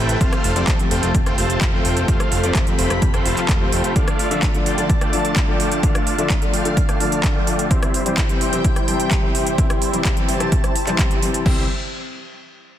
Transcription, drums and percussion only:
0.09 closed hi-hat medium
0.21 kick loud
0.21 closed hi-hat medium
0.33 cross-stick medium
0.33 closed hi-hat soft
0.44 open hi-hat loud
0.56 closed hi-hat soft
0.68 kick loud
0.68 clap loud
0.68 closed hi-hat medium
0.79 closed hi-hat soft
0.91 open hi-hat loud
1.03 closed hi-hat medium
1.15 kick loud
1.15 closed hi-hat medium
1.26 cross-stick medium
1.26 closed hi-hat soft
1.38 open hi-hat loud
1.50 closed hi-hat soft
1.61 kick loud
1.61 clap loud
1.61 closed hi-hat medium
1.85 open hi-hat loud
1.97 closed hi-hat soft
2.08 kick loud
2.08 closed hi-hat medium
2.20 cross-stick medium
2.20 closed hi-hat soft
2.32 open hi-hat loud
2.43 closed hi-hat medium
2.55 kick loud
2.55 clap loud
2.55 closed hi-hat medium
2.67 closed hi-hat soft
2.79 open hi-hat loud
2.90 cross-stick medium
2.90 closed hi-hat soft
3.02 kick loud
3.02 closed hi-hat medium
3.14 cross-stick medium
3.14 closed hi-hat soft
3.25 open hi-hat loud
3.37 clap soft
3.37 closed hi-hat soft
3.49 kick loud
3.49 clap loud
3.49 closed hi-hat medium
3.72 open hi-hat loud
3.84 closed hi-hat medium
3.96 kick loud
3.96 closed hi-hat medium
4.08 cross-stick medium
4.08 closed hi-hat soft
4.19 open hi-hat loud
4.31 closed hi-hat soft
4.43 kick loud
4.43 clap loud
4.43 closed hi-hat medium
4.54 closed hi-hat soft
4.66 open hi-hat loud
4.78 closed hi-hat medium
4.90 kick loud
4.90 closed hi-hat medium
5.01 cross-stick medium
5.01 closed hi-hat soft
5.13 open hi-hat loud
5.25 closed hi-hat soft
5.36 kick loud
5.36 clap loud
5.36 closed hi-hat medium
5.60 open hi-hat loud
5.72 closed hi-hat medium
5.83 kick loud
5.83 closed hi-hat medium
5.95 cross-stick medium
5.95 closed hi-hat soft
6.07 open hi-hat loud
6.18 closed hi-hat medium
6.30 kick loud
6.30 clap loud
6.30 closed hi-hat medium
6.42 closed hi-hat soft
6.54 open hi-hat loud
6.65 closed hi-hat medium
6.77 kick loud
6.77 closed hi-hat medium
6.89 cross-stick medium
6.89 closed hi-hat soft
7.00 open hi-hat loud
7.12 closed hi-hat medium
7.24 kick loud
7.24 clap loud
7.24 closed hi-hat medium
7.47 open hi-hat loud
7.59 closed hi-hat medium
7.71 kick loud
7.71 closed hi-hat medium
7.83 cross-stick medium
7.83 closed hi-hat soft
7.94 open hi-hat loud
8.06 closed hi-hat medium
8.18 kick loud
8.18 clap loud
8.18 closed hi-hat medium
8.29 closed hi-hat soft
8.41 open hi-hat loud
8.53 closed hi-hat medium
8.64 kick loud
8.64 closed hi-hat medium
8.76 cross-stick medium
8.76 closed hi-hat soft
8.88 open hi-hat loud
9.00 closed hi-hat medium
9.11 kick loud
9.11 clap loud
9.11 closed hi-hat medium
9.35 open hi-hat loud
9.47 closed hi-hat medium
9.58 kick loud
9.58 closed hi-hat medium
9.70 cross-stick medium
9.70 closed hi-hat soft
9.82 open hi-hat loud
9.93 closed hi-hat medium
10.05 kick loud
10.05 clap loud
10.05 closed hi-hat medium
10.17 closed hi-hat soft
10.29 open hi-hat loud
10.40 cross-stick medium
10.40 closed hi-hat medium
10.52 kick loud
10.52 closed hi-hat medium
10.64 cross-stick medium
10.64 closed hi-hat soft
10.76 open hi-hat loud
10.87 clap soft
10.87 closed hi-hat medium
10.99 kick loud
10.99 clap loud
10.99 closed hi-hat medium
11.11 closed hi-hat soft
11.22 open hi-hat loud
11.34 closed hi-hat medium
11.46 kick loud
11.46 crash medium

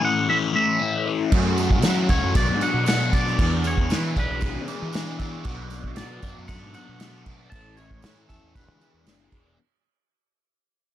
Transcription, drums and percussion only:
1.32 kick loud
1.32 crash medium
1.58 tambourine medium
1.58 crash medium
1.71 kick medium
1.82 snare loud
1.82 tambourine loud
1.82 crash medium
2.09 kick medium
2.09 crash medium
2.35 kick loud
2.35 tambourine medium
2.35 crash medium
2.61 tambourine medium
2.61 crash medium
2.86 snare loud
2.86 tambourine medium
2.86 crash medium
3.13 kick medium
3.13 tambourine soft
3.13 crash medium
3.27 snare soft
3.39 kick loud
3.39 crash medium
3.64 tambourine medium
3.64 crash medium
3.78 kick medium
3.90 snare loud
3.90 tambourine medium
3.90 crash medium
4.16 kick medium
4.16 crash medium
4.41 kick loud
4.41 tambourine medium
4.41 crash medium
4.68 tambourine medium
4.68 crash medium
4.93 snare loud
4.93 tambourine medium
4.93 crash medium
5.19 kick medium
5.19 tambourine soft
5.19 crash medium
5.45 kick loud
5.45 crash medium
5.70 snare soft
5.70 tambourine medium
5.70 crash medium
5.84 kick medium
5.96 snare loud
5.96 tambourine loud
5.96 crash medium
6.22 kick medium
6.22 tambourine medium
6.22 crash medium
6.48 kick loud
6.48 tambourine medium
6.48 crash medium
6.74 tambourine medium
6.74 crash medium
7.00 snare loud
7.00 tambourine medium
7.00 crash medium
7.26 kick medium
7.26 tambourine soft
7.26 crash medium
7.52 kick loud
7.52 tambourine soft
7.52 crash medium
7.77 tambourine medium
7.77 crash medium
7.91 kick medium
8.02 snare loud
8.02 tambourine loud
8.02 crash medium
8.29 kick medium
8.29 tambourine medium
8.29 crash medium
8.55 kick loud
8.55 tambourine medium
8.55 crash medium
8.81 tambourine medium
8.81 crash medium
9.06 snare loud
9.06 tambourine medium
9.06 crash medium
9.32 kick medium
9.32 crash medium

